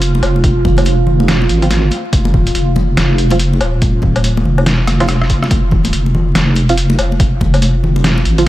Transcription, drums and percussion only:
0.02 closed hi-hat
0.15 muted conga
0.23 closed hi-hat, low woodblock
0.36 muted conga
0.44 kick, closed hi-hat
0.65 kick, muted conga, low conga
0.77 closed hi-hat, high conga, low woodblock
0.85 closed hi-hat, muted conga
1.07 low conga
1.20 muted conga
1.28 snare, closed hi-hat
1.42 muted conga
1.49 closed hi-hat
1.62 closed hi-hat
1.71 snare, closed hi-hat, muted conga
1.91 closed hi-hat, muted conga
2.13 kick, closed hi-hat
2.25 muted conga
2.34 kick, low conga
2.47 closed hi-hat, muted conga, high conga
2.55 closed hi-hat
2.76 muted conga, low conga
2.97 snare, closed hi-hat, muted conga
3.18 closed hi-hat
3.30 closed hi-hat, muted conga
3.39 closed hi-hat
3.53 muted conga
3.61 closed hi-hat, low woodblock
3.82 kick, closed hi-hat, muted conga
4.02 kick, muted conga, low conga
4.16 closed hi-hat, high conga, low woodblock
4.24 closed hi-hat
4.37 muted conga
4.45 low conga
4.58 muted conga, low woodblock
4.66 snare, closed hi-hat
4.87 cross-stick, closed hi-hat, muted conga
5.00 cross-stick, closed hi-hat, low woodblock
5.08 cross-stick, closed hi-hat, muted conga
5.21 cross-stick
5.30 kick, closed hi-hat
5.43 cross-stick, muted conga
5.51 kick, closed hi-hat, muted conga
5.71 kick, low conga
5.84 closed hi-hat, muted conga, high conga
5.93 closed hi-hat
6.06 muted conga
6.15 low conga
6.35 snare, closed hi-hat, muted conga
6.56 closed hi-hat, muted conga
6.69 closed hi-hat
6.77 closed hi-hat
6.90 muted conga
6.99 closed hi-hat, low woodblock
7.12 muted conga
7.20 kick, closed hi-hat
7.41 kick, muted conga, low conga
7.54 closed hi-hat, high conga, low woodblock
7.62 closed hi-hat, muted conga
7.84 low conga
7.96 muted conga
8.04 snare, closed hi-hat
8.18 muted conga
8.25 closed hi-hat
8.38 closed hi-hat

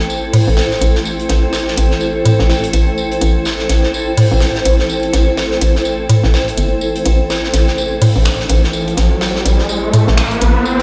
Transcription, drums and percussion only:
0.10 tambourine
0.33 closed hi-hat, open hi-hat
0.57 snare, tambourine
0.71 snare
0.81 closed hi-hat, tambourine
0.96 snare
1.05 tambourine
1.20 closed hi-hat
1.29 snare, closed hi-hat, tambourine
1.53 snare, tambourine
1.68 snare
1.77 closed hi-hat, tambourine
1.91 snare
2.01 tambourine
2.25 closed hi-hat, tambourine
2.39 snare
2.50 snare, tambourine
2.64 closed hi-hat
2.73 closed hi-hat, tambourine
2.98 tambourine
3.12 closed hi-hat
3.21 closed hi-hat, tambourine
3.45 snare, tambourine
3.59 snare
3.69 snare, closed hi-hat, tambourine
3.83 snare
3.94 tambourine
4.17 closed hi-hat, open hi-hat
4.40 snare, tambourine
4.55 snare
4.65 closed hi-hat, tambourine
4.79 snare
4.89 tambourine
5.03 closed hi-hat
5.13 snare, closed hi-hat, tambourine
5.37 snare, tambourine
5.51 snare
5.61 closed hi-hat, tambourine
5.76 snare
5.85 tambourine
6.09 closed hi-hat, tambourine
6.23 snare
6.34 snare, tambourine
6.48 closed hi-hat
6.58 closed hi-hat, tambourine
6.81 tambourine
6.96 closed hi-hat
7.06 closed hi-hat, tambourine
7.30 snare, tambourine
7.44 snare
7.53 snare, closed hi-hat, tambourine
7.68 snare
7.78 tambourine
8.02 closed hi-hat, open hi-hat
8.25 finger snap, snare, tambourine
8.40 snare
8.49 closed hi-hat, tambourine
8.64 snare
8.73 tambourine
8.88 closed hi-hat
8.97 snare, closed hi-hat, tambourine
9.21 snare, tambourine
9.36 snare
9.46 closed hi-hat, tambourine
9.59 snare
9.69 tambourine
9.93 closed hi-hat, tambourine
10.07 snare
10.17 finger snap, snare, tambourine
10.31 closed hi-hat
10.41 closed hi-hat, tambourine
10.65 tambourine

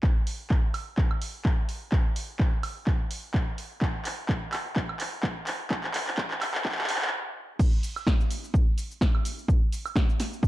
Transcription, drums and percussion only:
0.03 kick, clap
0.27 open hi-hat
0.50 kick, clap
0.74 open hi-hat, high woodblock
0.98 kick, clap
1.11 high woodblock
1.22 open hi-hat
1.45 kick, clap
1.69 open hi-hat
1.92 kick, clap
2.16 open hi-hat
2.39 kick, clap
2.63 open hi-hat, high woodblock
2.87 kick, clap
3.11 open hi-hat
3.34 kick, clap
3.58 open hi-hat
3.81 kick, clap
4.05 clap, open hi-hat
4.29 kick, clap
4.53 clap, open hi-hat, high woodblock
4.76 kick, clap
4.89 high woodblock
5.00 clap, open hi-hat
5.23 kick, clap
5.47 clap, open hi-hat
5.70 kick, clap
5.84 clap
5.94 clap, open hi-hat
6.07 clap
6.18 kick, clap
6.31 clap
6.42 clap, open hi-hat, high woodblock
6.55 clap
6.65 kick, clap
6.72 clap
6.78 clap
6.83 clap
6.89 clap, open hi-hat
6.95 clap
7.02 clap
7.07 clap
7.59 kick, crash, cabasa
7.83 open hi-hat, cabasa
7.96 cabasa, high woodblock
8.07 kick, snare, cabasa
8.20 cabasa
8.31 open hi-hat, cabasa
8.44 cabasa
8.54 kick, cabasa
8.78 open hi-hat, cabasa
8.91 cabasa
9.01 kick, snare, cabasa
9.15 high woodblock
9.25 open hi-hat, cabasa
9.39 cabasa
9.48 kick, cabasa
9.72 open hi-hat, cabasa
9.86 cabasa, high woodblock
9.96 kick, snare, cabasa
10.09 cabasa
10.20 snare, open hi-hat, cabasa
10.33 cabasa
10.43 kick, cabasa

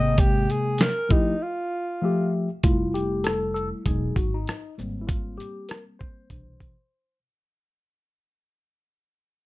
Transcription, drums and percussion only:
0.18 kick, closed hi-hat
0.50 closed hi-hat, shaker
0.78 snare, closed hi-hat
1.10 kick, shaker
2.63 kick, closed hi-hat
2.95 closed hi-hat, shaker
3.24 cross-stick, closed hi-hat
3.56 shaker
3.86 kick, closed hi-hat
4.16 kick, closed hi-hat, shaker
4.47 cross-stick, closed hi-hat
4.79 shaker
5.09 kick, closed hi-hat
5.40 closed hi-hat, shaker
5.69 cross-stick, closed hi-hat
6.00 kick, shaker
6.30 kick, closed hi-hat
6.60 kick, closed hi-hat, shaker

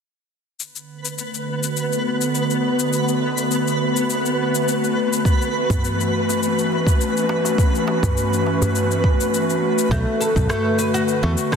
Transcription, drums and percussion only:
0.60 cabasa
0.76 cabasa
1.05 cabasa
1.18 cabasa
1.34 cabasa
1.63 cabasa
1.77 cabasa
1.93 cabasa
2.21 cabasa
2.35 cabasa
2.50 cabasa
2.79 cabasa
2.93 cabasa
3.08 cabasa
3.38 cabasa
3.51 cabasa
3.68 cabasa
3.97 cabasa
4.10 cabasa
4.26 cabasa
4.55 cabasa
4.68 cabasa
4.84 cabasa
5.13 cabasa
5.25 kick, cabasa
5.42 cabasa
5.70 kick, darbuka dum, cabasa
5.84 cabasa
6.01 cabasa
6.29 darbuka tek, cabasa
6.43 cabasa
6.59 cabasa
6.72 darbuka ka
6.87 kick, cabasa
7.01 cabasa
7.17 cabasa
7.29 darbuka tek
7.45 darbuka ka, cabasa
7.58 kick, cabasa
7.75 cabasa
7.87 darbuka ka, darbuka tek
8.03 kick, darbuka dum, cabasa
8.17 cabasa
8.33 cabasa
8.47 darbuka ka
8.62 darbuka tek, darbuka dum, cabasa
8.75 cabasa
8.91 cabasa
9.04 kick
9.21 cabasa
9.34 cabasa
9.50 cabasa
9.79 cabasa
9.91 kick, cabasa
10.21 cabasa
10.36 kick, darbuka ka, darbuka dum, cabasa
10.50 cross-stick, cabasa
10.79 cabasa
10.95 cabasa
11.08 cabasa
11.38 cabasa
11.52 kick, cross-stick, darbuka ka

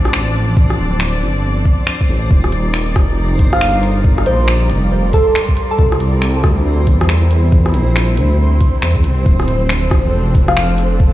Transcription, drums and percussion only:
0.05 cross-stick
0.13 finger snap
0.35 shaker
0.57 kick
0.70 cross-stick, shaker
0.79 shaker
0.92 shaker
1.00 finger snap
1.22 shaker
1.35 shaker
1.65 kick, shaker
1.87 finger snap
2.01 kick
2.09 shaker
2.31 kick
2.44 cross-stick, shaker
2.52 open hi-hat, shaker
2.66 shaker
2.74 finger snap
2.96 kick, cross-stick, open hi-hat, shaker
3.09 shaker
3.39 kick, open hi-hat, shaker
3.53 cross-stick
3.61 finger snap
3.83 open hi-hat, shaker
4.04 kick
4.18 cross-stick, shaker
4.26 open hi-hat, shaker
4.40 shaker
4.48 finger snap
4.70 open hi-hat, shaker
4.83 shaker
5.13 kick, open hi-hat, shaker
5.35 finger snap
5.49 kick
5.57 open hi-hat, shaker
5.79 kick
5.92 cross-stick, shaker
6.00 open hi-hat, shaker
6.14 shaker
6.22 finger snap
6.44 kick, cross-stick, open hi-hat, shaker
6.57 shaker
6.87 kick, open hi-hat, shaker
7.01 cross-stick
7.09 finger snap
7.31 open hi-hat, shaker
7.52 kick
7.66 cross-stick, shaker
7.74 open hi-hat, shaker
7.88 shaker
7.96 finger snap
8.17 open hi-hat, shaker
8.31 shaker
8.61 kick, open hi-hat, shaker
8.82 finger snap
8.96 kick
9.04 open hi-hat, shaker
9.26 kick
9.40 cross-stick, shaker
9.48 open hi-hat, shaker
9.61 shaker
9.69 finger snap
9.91 kick, cross-stick, open hi-hat, shaker
10.05 shaker
10.35 kick, open hi-hat, shaker
10.48 cross-stick
10.57 finger snap
10.78 open hi-hat, shaker
11.00 kick

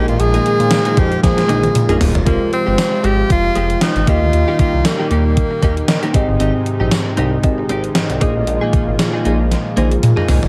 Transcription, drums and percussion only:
0.08 closed hi-hat
0.20 closed hi-hat
0.34 closed hi-hat
0.46 closed hi-hat
0.60 closed hi-hat
0.71 snare, closed hi-hat, tambourine
0.85 closed hi-hat
0.97 kick, closed hi-hat
1.12 closed hi-hat
1.23 kick, snare, closed hi-hat
1.38 snare, closed hi-hat
1.49 closed hi-hat, high tom
1.63 closed hi-hat, high tom
1.75 closed hi-hat, mid tom
1.89 closed hi-hat, mid tom
2.01 floor tom, open hi-hat
2.15 closed hi-hat, floor tom
2.27 kick, closed hi-hat
2.53 closed hi-hat
2.78 snare, closed hi-hat, tambourine
3.04 closed hi-hat
3.30 kick, closed hi-hat
3.55 closed hi-hat
3.70 closed hi-hat
3.81 snare, closed hi-hat, tambourine
3.96 closed hi-hat
4.07 kick, closed hi-hat
4.33 closed hi-hat
4.59 kick, closed hi-hat
4.85 snare, closed hi-hat, tambourine
5.11 closed hi-hat
5.37 kick, closed hi-hat
5.63 kick, closed hi-hat
5.77 closed hi-hat
5.88 snare, closed hi-hat, tambourine
6.03 closed hi-hat
6.14 kick, closed hi-hat
6.40 closed hi-hat
6.66 closed hi-hat
6.91 snare, closed hi-hat, tambourine
7.17 closed hi-hat
7.43 kick, closed hi-hat
7.69 closed hi-hat
7.84 closed hi-hat
7.95 snare, closed hi-hat, tambourine
8.10 closed hi-hat
8.21 kick, closed hi-hat
8.47 closed hi-hat
8.73 kick, closed hi-hat
8.99 snare, closed hi-hat, tambourine
9.25 closed hi-hat
9.51 snare, closed hi-hat
9.77 closed hi-hat, high tom
9.91 closed hi-hat
10.03 closed hi-hat, mid tom
10.17 mid tom
10.28 floor tom, open hi-hat
10.43 floor tom

